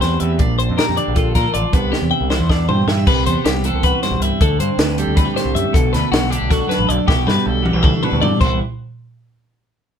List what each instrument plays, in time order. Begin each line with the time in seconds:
Already playing: clean electric guitar A3 C4 G4
0.00 clean electric guitar E2 B4 C5, fingered electric bass E2, snare, closed hi-hat
0.19 fingered electric bass E2, clean electric guitar G4 E5, closed hi-hat
0.38 fingered electric bass A#1, clean electric guitar A#2 D4 D5, kick, closed hi-hat
0.59 clean electric guitar C5, closed hi-hat
0.69 fingered electric bass F2
0.77 clean electric guitar G4 A#4, snare, closed hi-hat
0.89 fingered electric bass F2
0.96 clean electric guitar D3 D4 D5, closed hi-hat
1.08 fingered electric bass A#1
1.15 clean electric guitar F4 A4, kick, closed hi-hat
1.35 fingered electric bass A#2, clean electric guitar F3 A4 A#4, kick, snare, closed hi-hat
1.54 fingered electric bass A1, clean electric guitar F4 D5, closed hi-hat
1.73 fingered electric bass C2, clean electric guitar C3 B3 B4, kick, closed hi-hat
1.92 clean electric guitar G4, snare
2.02 fingered electric bass E2
2.11 clean electric guitar E4 G5
2.21 fingered electric bass C2
2.30 clean electric guitar E3 B3 C5, snare
2.40 fingered electric bass E2
2.49 clean electric guitar D4 D5, kick, snare
2.69 clean electric guitar G2 G4 C5, fingered electric bass G2, floor tom
2.87 fingered electric bass G2, clean electric guitar B3 E5, snare
2.97 clean electric guitar D4
3.07 fingered electric bass C2, clean electric guitar C3 B4, kick, crash
3.26 fingered electric bass E2, clean electric guitar B3 C5, closed hi-hat
3.45 fingered electric bass C2, clean electric guitar G4, snare, closed hi-hat
3.64 clean electric guitar E3 C4 A4, closed hi-hat
3.73 fingered electric bass C2
3.83 clean electric guitar F#4 B4, kick, closed hi-hat
4.03 clean electric guitar G2 C4 C5, snare, closed hi-hat
4.11 fingered electric bass B1
4.20 fingered electric bass C2, clean electric guitar E4 E5, closed hi-hat
4.41 fingered electric bass D2, clean electric guitar D3 A4, kick, closed hi-hat
4.60 fingered electric bass G2, clean electric guitar C4 C5, closed hi-hat
4.78 fingered electric bass D2, clean electric guitar B4, snare, closed hi-hat
4.98 clean electric guitar G3 G4 A4, closed hi-hat
5.07 fingered electric bass D2
5.16 clean electric guitar E4 B4, kick, snare, closed hi-hat
5.25 clean electric guitar G4
5.34 clean electric guitar A2 G4 C5, snare, closed hi-hat
5.45 fingered electric bass C2
5.55 fingered electric bass F#2, clean electric guitar G4 E5, closed hi-hat
5.73 fingered electric bass B1, clean electric guitar B2 A4, kick, closed hi-hat
5.93 fingered electric bass D2, clean electric guitar A3 B4, snare, closed hi-hat
6.12 fingered electric bass B1, clean electric guitar F#4, snare, closed hi-hat
6.29 clean electric guitar D3 D4 G4, closed hi-hat
6.41 fingered electric bass B1
6.49 clean electric guitar F#4 A4, kick, snare, closed hi-hat
6.67 clean electric guitar F#2 D4 B4, snare, closed hi-hat
6.79 fingered electric bass A1
6.87 fingered electric bass B1, clean electric guitar A4 D5, closed hi-hat
7.06 fingered electric bass B1, clean electric guitar B2 G4, kick, snare
7.26 fingered electric bass G2, clean electric guitar G3 B4, snare
7.46 fingered electric bass B1, clean electric guitar A4
7.62 clean electric guitar E3 B3 G4, mid tom
7.73 fingered electric bass B1, clean electric guitar D4
7.83 clean electric guitar E4 A4, kick, mid tom
7.94 clean electric guitar F#4
8.03 clean electric guitar B2 D4 B4, floor tom
8.12 fingered electric bass D2
8.22 fingered electric bass G2, clean electric guitar A4 D5, floor tom
8.41 fingered electric bass C2, clean electric guitar C3 E3 C5, kick, crash
8.45 clean electric guitar B3 C4 E4